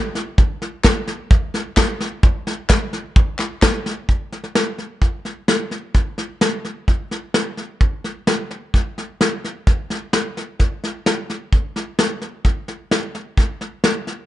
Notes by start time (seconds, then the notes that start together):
0.15 snare
0.38 kick, snare
0.62 snare
0.84 kick, snare, clap
1.07 snare
1.31 kick, snare
1.54 snare
1.77 kick, snare, clap
2.00 snare
2.23 kick, snare
2.47 snare
2.70 kick, snare, clap
2.93 snare
3.16 kick, snare
3.39 snare, clap
3.62 kick, snare, clap
3.86 snare
4.09 kick, snare
4.32 snare
4.44 snare
4.55 snare
4.78 snare
5.01 kick, snare
5.25 snare
5.48 snare
5.71 snare
5.94 kick, snare
6.18 snare
6.41 snare
6.65 snare
6.88 kick, snare
7.11 snare
7.34 snare
7.57 snare
7.81 kick, snare
8.04 snare
8.27 snare
8.51 snare
8.74 kick, snare
8.98 snare
9.21 snare
9.44 snare
9.67 kick, snare
9.90 snare
10.13 snare
10.37 snare
10.59 kick, snare
10.84 snare
11.06 snare
11.30 snare
11.53 kick, snare
11.76 snare
11.99 snare
12.21 snare
12.45 kick, snare
12.68 snare
12.91 snare
13.15 snare
13.37 kick, snare
13.61 snare
13.84 snare
14.07 snare